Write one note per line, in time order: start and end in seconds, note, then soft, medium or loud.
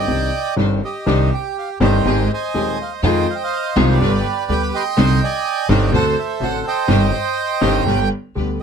0.00 0.55 D5 medium
0.00 0.55 D#5 medium
0.00 0.54 G5 loud
0.07 0.29 C2 medium
0.07 0.29 C2 soft
0.07 0.29 C3 medium
0.07 0.29 D#3 soft
0.07 0.29 C4 soft
0.07 0.29 D4 soft
0.07 0.29 D#4 soft
0.07 0.29 G4 soft
0.07 0.29 C5 medium
0.56 0.79 G1 medium
0.56 0.79 G2 medium
0.56 0.79 D#3 medium
0.56 0.79 C4 medium
0.56 0.79 D4 medium
0.56 0.80 D4 medium
0.56 0.80 D#4 medium
0.56 0.79 G4 medium
0.56 0.80 C5 medium
0.84 1.79 G4 medium
0.84 1.30 D#5 medium
1.06 1.29 C2 loud
1.06 1.29 C2 medium
1.06 1.28 C3 medium
1.06 1.28 D#3 medium
1.06 1.28 C4 medium
1.06 1.29 D4 medium
1.06 1.29 D#4 medium
1.06 1.29 G4 medium
1.06 1.29 C5 medium
1.34 1.57 G5 medium
1.59 1.69 F5 medium
1.80 2.02 G1 loud
1.80 2.02 G2 loud
1.80 2.02 D#3 medium
1.80 2.02 C4 medium
1.80 2.02 D4 medium
1.80 2.02 D#4 medium
1.80 2.02 G4 loud
1.80 2.02 C5 medium
1.80 2.32 C5 medium
1.80 2.32 D#5 medium
1.80 2.28 G5 medium
2.05 2.27 G#1 loud
2.05 2.27 G#1 medium
2.05 2.27 G#2 medium
2.05 2.27 D#3 medium
2.05 2.27 G#3 medium
2.05 2.27 C4 medium
2.05 2.27 G4 medium
2.05 2.27 G#4 medium
2.33 3.01 C5 medium
2.33 3.02 D#5 medium
2.33 2.78 G#5 loud
2.54 2.76 D#1 medium
2.54 2.75 D#2 medium
2.54 2.76 D#2 medium
2.54 2.76 D#3 soft
2.54 2.76 G#3 soft
2.54 2.76 C4 medium
2.54 2.76 C4 soft
2.54 2.76 G4 medium
2.54 2.76 G#4 medium
2.82 2.92 F5 medium
3.03 3.24 F2 loud
3.03 3.25 F2 loud
3.03 3.24 D#3 medium
3.03 3.25 F3 medium
3.03 3.25 G#3 medium
3.03 3.25 C4 medium
3.03 3.24 D#4 medium
3.03 3.24 F4 medium
3.03 3.25 F4 medium
3.03 3.24 G#4 loud
3.03 3.98 C5 medium
3.03 3.78 D#5 medium
3.03 3.27 G5 loud
3.30 3.36 F5 loud
3.35 3.42 G5 medium
3.44 3.76 F5 loud
3.76 3.97 C2 loud
3.76 3.97 C3 loud
3.76 3.97 D#3 medium
3.76 3.97 G#3 medium
3.76 3.98 C4 medium
3.76 3.97 D#4 medium
3.76 3.97 F4 loud
3.76 3.97 F4 medium
3.76 3.97 G#4 loud
3.76 3.85 D#5 medium
3.91 4.83 G4 medium
3.91 4.83 B4 medium
3.91 4.53 D5 loud
4.00 4.21 G1 loud
4.00 4.22 G1 medium
4.00 4.22 G2 medium
4.00 4.22 D3 medium
4.00 4.22 G3 medium
4.00 4.22 B3 medium
4.00 4.22 D4 medium
4.00 4.22 G4 medium
4.00 4.22 B4 loud
4.49 4.70 D2 medium
4.49 4.70 D3 medium
4.49 4.70 G3 soft
4.49 4.70 B3 soft
4.49 4.70 D4 medium
4.49 4.70 G4 medium
4.49 4.70 B4 medium
4.49 4.62 G5 loud
4.63 4.68 B5 loud
4.75 5.22 D#5 medium
4.75 5.66 G5 loud
4.75 5.20 C6 loud
4.97 5.18 C2 loud
4.97 5.18 C3 loud
4.97 5.18 D3 medium
4.97 5.17 G3 medium
4.97 5.18 C4 medium
4.97 5.18 D4 loud
4.97 5.18 D#4 loud
4.97 5.18 D#4 medium
4.97 5.18 C5 loud
5.24 5.91 D5 medium
5.24 5.91 D#5 medium
5.24 5.68 G#5 loud
5.69 5.89 G1 loud
5.69 5.90 G1 loud
5.69 5.90 G2 loud
5.69 5.89 D3 medium
5.69 5.90 G3 medium
5.69 5.90 C4 medium
5.69 5.90 D4 medium
5.69 5.90 D#4 loud
5.69 5.90 D#4 medium
5.69 5.90 C5 loud
5.69 5.93 G5 loud
5.92 6.13 D2 medium
5.92 6.13 D2 loud
5.92 6.13 D3 medium
5.92 6.13 A3 medium
5.92 6.13 C4 medium
5.92 6.13 D4 medium
5.92 6.13 F#4 medium
5.92 6.14 F#4 medium
5.92 6.86 A4 loud
5.92 6.14 C5 loud
5.92 6.66 C5 medium
5.92 6.06 F#5 loud
6.19 6.43 E5 medium
6.40 6.61 A1 medium
6.40 6.61 A2 medium
6.40 6.61 D3 medium
6.40 6.61 A3 soft
6.40 6.61 C4 medium
6.40 6.62 D4 medium
6.40 6.61 F#4 medium
6.40 6.62 F#4 medium
6.40 6.62 C5 medium
6.40 6.65 F#5 loud
6.67 7.84 C5 medium
6.67 7.84 D#5 medium
6.67 8.09 G5 loud
6.88 7.09 G1 loud
6.88 7.09 G2 loud
6.88 7.09 D#3 medium
6.88 7.09 G3 medium
6.88 7.09 C4 medium
6.88 7.10 D#4 medium
6.88 7.09 G4 medium
6.88 7.10 G4 medium
6.88 7.10 C5 medium
7.61 7.82 G1 medium
7.61 7.82 G1 loud
7.61 7.82 G2 loud
7.61 7.82 D#3 medium
7.61 7.82 G3 medium
7.61 7.82 C4 medium
7.61 7.83 D#4 medium
7.61 7.83 G4 medium
7.61 7.83 C5 medium
7.86 8.07 G1 loud
7.86 8.07 G1 medium
7.86 8.07 G2 medium
7.86 8.07 D3 medium
7.86 8.07 G3 medium
7.86 8.07 B3 medium
7.86 8.08 D4 medium
7.86 8.07 G4 medium
7.86 8.08 G4 medium
7.86 8.08 B4 medium
8.35 8.57 D2 soft
8.35 8.57 D2 medium
8.35 8.57 D3 medium
8.35 8.57 G3 soft
8.35 8.57 B3 soft
8.35 8.57 D4 soft
8.35 8.57 G4 medium
8.35 8.57 G4 soft
8.35 8.57 B4 medium